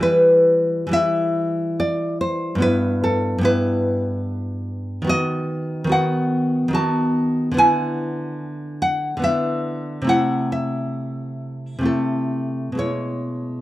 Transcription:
nylon-string guitar
Already playing: E3 G3
0.01 E4 B4
0.87 E3 G3
0.91 E4 E5
1.80 D5
2.21 C5
2.55 G2 B3
2.60 E4 B4
3.04 A4
3.38 G2 B3
3.43 E4 B4
5.02 D#3 B3
5.07 F#4 D#5
5.84 D#3 B3
5.89 F#4 F#5
6.68 D#3 B3
6.73 F#4 A5
7.51 D3 B3
7.57 E4 G#5
8.82 F#5
9.17 D3 B3
9.22 E4 E5
10.02 C3 A3
10.07 E4 F#5
10.52 E5
11.79 C3 A3
11.83 E4 A4
12.72 B2 G#3
12.78 E4 C#5

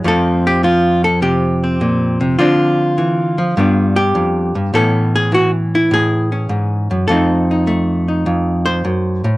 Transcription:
hollow-body jazz guitar
0.04 F2 F3 A3 C4 A4
0.47 G4
0.63 F3 F4
1.04 A4
1.22 C3 G4
1.64 C4
1.81 A#2
2.21 C3
2.39 D3 F3 C4 D4 F4
2.98 E3
3.38 F3
3.57 G2 G3 B3 D4
3.96 G4
4.15 F2
4.55 G2
4.74 A2 E3 B3 C#4 A4
5.16 G#4
5.32 E3 F#4
5.75 E4
5.91 A2 G#4
6.32 C#4
6.49 G#2
6.91 F#2
7.08 F2 A3 C4 D#4 A4
7.51 D#4
7.67 A3
8.08 D#4
8.26 F2
8.66 C5
8.85 F#2
9.24 A2

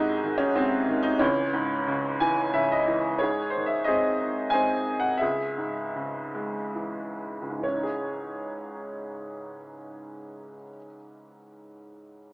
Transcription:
upright piano
Already playing: G#2 C3 C4 D#4 E4 F#4
0.24 D#3
0.38 C#4
0.55 G#2 C4
0.88 D#3
1.03 D#4
1.19 C#2 E3 C#4
1.53 G#2
1.87 C#3
2.20 E3 G#5
2.53 C#3 E5
2.72 D#5
2.87 E3
3.19 G#2 G#4 C#5
3.50 C5
3.56 D#3
3.66 E5
3.84 C4 G#4 C5 D#5
4.21 D#4
4.50 C5 D#5 G#5
4.55 C4
5.00 F#5
5.17 G#4 E5
5.22 C#2
5.58 G#2
5.96 C#3
6.35 G#3
6.75 E3
7.42 C#2
7.50 G#2
7.59 E3
7.63 C#4 C#5
7.74 D#4
7.83 G#4

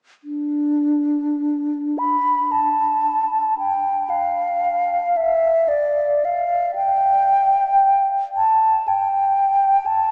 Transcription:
flute
0.24 D4
1.98 B5
2.52 A5
3.58 G5
4.10 F5
5.17 E5
5.68 D5
6.25 F5
6.75 G5
8.36 A5
8.88 G5
9.86 A5

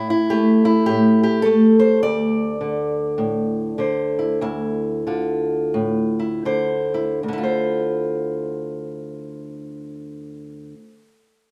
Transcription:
steel-string acoustic guitar
Already playing: A2
0.10 E4
0.30 A3 G4
0.65 E4
0.86 A2 G4
1.23 G4
1.42 A3 A4
1.79 C5
2.03 D2 D5
2.61 D3
3.18 A2
3.78 D3 C5
4.19 E4
4.41 D2 E4
5.07 D3 F4
5.74 A2
6.19 E4
6.45 D3 C5
6.94 E4
7.23 D2
7.28 D3
7.33 E4
7.38 F4
7.44 C5

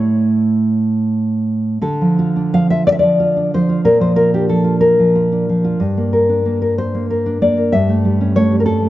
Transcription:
nylon-string guitar
Already playing: A2 A3 E4 C#5
1.82 D3 A4
2.01 F3
2.19 F4
2.36 D4
2.54 F3 F5
2.70 F4 E5
2.87 D5
2.92 E5
2.99 F3 D5
3.20 F4
3.37 D4
3.54 F3 C5
3.69 F4
3.85 A#2 A#4
4.00 F3 C5
4.16 F4 A#4
4.34 D4 G4
4.49 F3 A4
4.64 F4
4.81 A#4
4.99 F3
5.15 F4
5.32 D4
5.49 F3
5.64 F4
5.80 G2
5.97 A#3
6.13 A#4
6.29 D4
6.45 A#3
6.62 A#4
6.78 C5
6.95 A#3
7.10 A#4
7.26 D4
7.42 A#3 D5
7.57 A#4
7.72 G2 E5
7.89 A3
8.05 G3
8.21 C#4
8.36 A3 C#5
8.52 G3
8.60 A#4
8.66 A4
8.82 A3

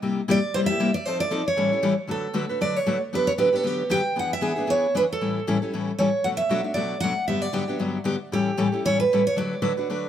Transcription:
steel-string acoustic guitar
0.02 C3 G3 A#3 E4 G4
0.28 C3 G3 A#3 E4 G4 D5
0.54 C3 G3 A#3 E4 G4 C5
0.66 G4 E5
0.71 A#3 E4
0.80 C3 G3 A#3 E4 G4
0.94 D5
1.06 F3 C4 D#4 A4 C5
1.20 D5
1.31 F3 C4 D#4 A4
1.48 C#5
1.57 A2 E3 G3 C#4 E4 A4
1.72 G3 C#4 E4 A4
1.82 A2 E3 G3 C#4 E4 A4
2.07 D3 F#3 A3 D4 F#4 A4 B4
2.33 D3 F#3 A3 D4 F#4 B4
2.49 A3 D4 F#4 B4
2.61 D3 F#3 A3 D4 F#4 B4 D5
2.76 C#5
2.86 D3 F#3 A3 D4 F#4 B4
3.13 D3 F#3 B3 D4 G4 B4
3.27 C#5
3.38 D3 F#3 B3 D4 G4 B4
3.53 B3 D4 G4 A4
3.63 D3 F#3 B3 D4 G4
3.90 D3 F#3 B3 D4 G4 G5
4.16 E3 B3 D4 G#4 F#5
4.33 E5
4.41 E3 B3 D4 G#4
4.56 B3 D4 G#4
4.67 E3 B3 D4 G#4 C#5
4.95 E3 B3 D4 G#4 B4
5.12 A4
5.21 A2 E3 G3 C#4 E4 A4
5.47 A2 E3 G3 C#4 E4 A4
5.62 G3 C#4 E4 A4
5.73 A2 E3 G3 C#4 E4 A4
5.99 A2 E3 G3 C#4 E4 A4 C#5
6.24 B2 F#3 A3 D4 F#4 F#5
6.37 E5
6.49 B2 F#3 A3 D4 F#4
6.64 A3 D4 F#4
6.74 B2 F#3 A3 D4 F#4 D5
7.00 B2 F#3 A3 D4 F#4 F#5
7.28 G2 D3 F#3 B3 D4 G4 E5
7.42 D5
7.53 G2 D3 F#3 B3 D4 G4
7.68 F#3 B3 D4 G4
7.79 G2 D3 F#3 B3 D4 G4
8.04 G2 D3 F#3 B3 D4 G4
8.32 A2 E3 G3 C#4 E4 G4 A4
8.57 A2 E3 G3 C#4 E4 A4
8.72 G3 C#4 E4 A4
8.85 A2 E3 G3 C#4 E4 A4 C#5
9.00 B4
9.13 A2 E3 G3 C#4 E4 A4
9.27 C#5
9.36 D3 F#3 A3 D4 F#4 B4 D5
9.62 D3 F#3 A3 D4 F#4 B4
9.77 A3 D4 F#4 B4
9.90 D3 F#3 A3 D4 F#4 B4

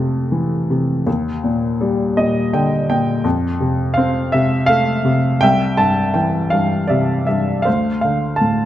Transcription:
grand piano
Already playing: F2 C3 A3
0.32 E3
0.70 C3
1.06 D#2
1.44 A#2
1.81 G3
2.17 A#2 D#5
2.53 D3 G5
2.89 A#2 G5
3.24 F2
3.61 C3
3.94 C4 F5
4.32 C3 E5
4.66 A3 F5
5.05 C3
5.41 C2 E5 G5
5.77 G2 A5
6.14 E3 G5
6.50 G2 F5
6.88 C3 D5 E5
7.27 G2 E5
7.62 C5 F5
7.67 D2
8.01 D3 F5
8.36 A5
8.41 A2

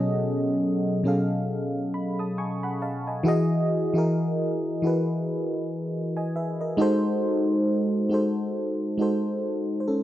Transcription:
fm electric piano
Already playing: B2 F#3 C#4 G#4 A4 C#5 D#5 F#5
1.04 B2 F#3 C#4 G#4 A4
1.08 F5
1.94 B5
2.19 A5 D#6
2.38 G#5 C#6
2.63 F#5 B5
2.82 D#5 F5 A5
3.07 D#5 G#5
3.23 E3 E4 F#4 G#4
3.28 D#5
3.94 E3 E4 F#4 G#4
3.98 A#4
4.82 E3 E4 F#4 G#4
4.87 B4
6.17 D#5 G#5
6.36 B4 E5
6.61 A#4 D#5
6.77 G#3 D#4 F#4 A4
6.82 C5
8.09 G#3 D#4 F#4 A4
8.14 C5
8.98 G#3 D#4 F#4 A4
9.02 C5
9.80 C5
9.88 C#4 A4

